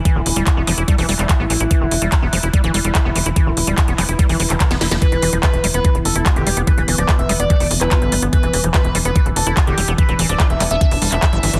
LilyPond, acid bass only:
\new Staff \with { instrumentName = "Acid bass" } { \clef bass \time 4/4 \key e \phrygian \tempo 4 = 145 e16 d16 r16 g16 r16 b16 f16 e'16 g16 e16 g16 g16 e16 b16 e16 e'16 | e16 d16 r16 g16 r16 b16 f16 e'16 g16 e16 g16 g16 e16 b16 e16 e'16 | e16 d16 r16 g16 r16 b16 f16 e'16 g16 e16 e16 d16 d16 b16 e'16 f16 | e16 e16 e16 f16 f'16 r16 g16 b16 e16 r8 e'16 f'16 d16 g16 b16 |
e16 e16 e16 f16 f'16 r16 g16 b16 e16 r8 e'16 f'16 d16 g16 b16 | e16 e16 e16 f16 f'16 r16 g16 b16 e16 r8 e'16 f'16 d16 g16 b16 | e16 e16 e16 f16 f'16 r16 g16 b16 e16 r16 g16 f'16 g16 f16 e16 e16 | }